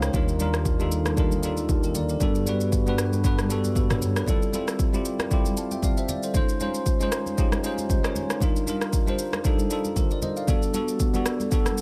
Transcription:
Already playing: tine electric piano G#3 C#4 D#4 F4 G4 C5 C#5 D#5 F5 G5
0.02 tine electric piano A#4 C#5, cross-stick, shaker
0.13 analog synth bass D#2, tine electric piano G3 D4 D#4 F4 A#4, kick, low conga, shaker
0.28 shaker
0.39 tine electric piano G3 D4 D#4 F4 A#4, high conga, shaker
0.54 cross-stick, shaker
0.65 kick, shaker
0.79 tine electric piano G3 D4 D#4 F4 A4, high conga, shaker
0.92 shaker
1.05 cross-stick, high conga, shaker
1.17 tine electric piano G3 D4 D#4 F4 A#4, kick, shaker
1.31 high conga, shaker
1.43 tine electric piano G3 D4 D#4 F4 A4, shaker
1.57 high conga, shaker
1.69 kick, high conga, low conga, shaker
1.83 tine electric piano G4 A#4, shaker
1.95 tine electric piano A#4 D5, high conga, low conga, shaker
2.09 tine electric piano G4 A#4, shaker
2.20 analog synth bass G2, tine electric piano G3 B3 D4 F#4 A4, kick, low conga, shaker
2.35 shaker
2.46 tine electric piano G3 B3 D4 F#4 B4, high conga, shaker
2.61 shaker
2.72 kick, shaker
2.86 tine electric piano G3 B3 D4 F#4 B4, high conga, shaker
2.98 cross-stick, shaker
3.12 high conga, shaker
3.23 tine electric piano G3 B3 D4 F#4 B4, kick, shaker
3.38 cross-stick, high conga, shaker
3.49 tine electric piano G3 B3 D4 F#4 A4, shaker
3.64 high conga, shaker
3.75 tine electric piano F#4 A4, kick, high conga, low conga, shaker
3.90 tine electric piano A4 C#5, cross-stick, mid tom, shaker
4.01 high conga, low conga, shaker
4.16 tine electric piano G4 B4, cross-stick, shaker
4.26 tine electric piano G3 C4 E4 F4 A4, kick, low conga, shaker
4.42 shaker
4.53 tine electric piano G3 C4 E4 F4 A4, high conga, shaker
4.68 cross-stick, shaker
4.79 kick, shaker
4.93 tine electric piano G3 C4 E4 F4 G4, high conga, shaker
5.05 shaker
5.19 cross-stick, high conga, shaker
5.30 tine electric piano G3 C4 E4 F4 G4, kick, shaker
5.45 high conga, shaker
5.57 tine electric piano F5 A5, shaker
5.71 tine electric piano E5 G5, high conga, shaker
5.82 tine electric piano D5 F5, kick, high conga, low conga, shaker
5.97 tine electric piano C5 E5, shaker
6.08 tine electric piano D5, high conga, low conga, shaker
6.23 tine electric piano A4 C5, shaker
6.34 tine electric piano G#3 C#4 D#4 F4 C5, kick, low conga, shaker
6.49 shaker
6.60 tine electric piano G#3 C#4 D#4 F4 C5, high conga, shaker
6.74 shaker
6.86 kick, shaker
7.00 tine electric piano G#3 C#4 D#4 F4 C5, high conga, shaker
7.12 cross-stick, shaker
7.26 high conga, shaker
7.37 tine electric piano G#3 C#4 D#4 F4 G4, kick, shaker
7.52 cross-stick, high conga, shaker
7.63 tine electric piano G#3 C#4 D#4 F4 C5, shaker
7.78 high conga, shaker
7.89 kick, high conga, low conga, shaker
8.03 tine electric piano G#3 C#4 D#4 F4 C#5, cross-stick, shaker
8.15 high conga, low conga, shaker
8.30 cross-stick, shaker
8.40 tine electric piano G3 D4 D#4 F4 A#4, kick, low conga, shaker
8.56 shaker
8.66 tine electric piano G3 D4 D#4 F4 A#4, high conga, shaker
8.81 cross-stick, shaker
8.93 kick, shaker
9.07 tine electric piano G3 D4 D#4 F4 C5, high conga, shaker
9.19 shaker
9.33 cross-stick, high conga, shaker
9.44 tine electric piano G3 D4 D#4 F4 A4, kick, shaker
9.58 high conga, shaker
9.70 tine electric piano G3 D4 D#4 F4 A4, shaker
9.85 high conga, shaker
9.96 tine electric piano G4 A#4, kick, high conga, low conga, shaker
10.11 tine electric piano A#4 D5, shaker
10.22 tine electric piano C5 D#5, high conga, low conga, shaker
10.37 tine electric piano D5 F5, shaker
10.47 tine electric piano G3 B3 D4 F#4 A4, kick, low conga, shaker
10.62 shaker
10.73 tine electric piano G3 B3 D4 F#4 A4, high conga, shaker
10.88 shaker
11.00 kick, shaker
11.13 tine electric piano G3 B3 D4 F#4 A4, high conga, shaker
11.26 cross-stick, shaker
11.40 high conga, shaker
11.51 tine electric piano G3 B3 D4 F#4 A4, kick, shaker
11.65 cross-stick, high conga, shaker
11.78 shaker

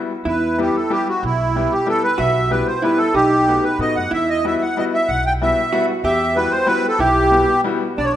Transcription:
0.25 upright bass E2, hollow-body jazz guitar E4, accordion B4
0.58 upright piano G3 B3 E4 G4, accordion G4
0.75 accordion A4
0.90 upright piano G3 B3 E4 G4, accordion G4
1.09 accordion F#4
1.23 upright bass B1, accordion E4
1.56 upright piano G3 B3 E4 G4
1.72 accordion G4
1.87 upright piano G3 B3 E4 G4, accordion A4
2.04 accordion B4
2.18 upright bass B1, hollow-body jazz guitar F#4, accordion E5
2.51 upright piano G3 B3 E4 G4, accordion B4
2.67 accordion C5
2.82 upright piano G3 B3 E4 G4, hollow-body jazz guitar E4, accordion B4
2.98 accordion A4
3.14 upright bass B1, hollow-body jazz guitar D#4, accordion G4
3.47 upright piano A3 B3 D#4 F#4
3.64 accordion B4
3.79 upright bass A2, upright piano A3 B3 D#4 F#4, accordion D#5
3.96 upright bass F#2, accordion F#5
4.11 upright bass E2, hollow-body jazz guitar E4, accordion E5
4.30 accordion D#5
4.45 upright piano G3 B3 E4 F#4, accordion E5
4.62 accordion F#5
4.77 upright piano G3 B3 E4 F#4, accordion D#5
4.94 accordion E5
5.08 upright bass B1, accordion F#5
5.26 accordion G5
5.42 upright piano G3 B3 E4 F#4, accordion E5
5.73 upright piano G3 B3 E4 F#4, hollow-body jazz guitar F#4
6.04 upright bass E2, hollow-body jazz guitar G4, accordion E5
6.36 upright piano G3 B3 E4 F#4, accordion B4
6.51 accordion C5
6.67 upright piano G3 B3 E4 F#4, accordion B4
6.88 accordion A4
6.99 upright bass B1, hollow-body jazz guitar E4, accordion G4
7.31 upright piano G3 B3 E4 F#4, hollow-body jazz guitar B3
7.64 upright piano G3 B3 E4 F#4
7.98 upright bass B1, hollow-body jazz guitar D4, accordion D5
8.05 accordion C#5
8.12 accordion D5

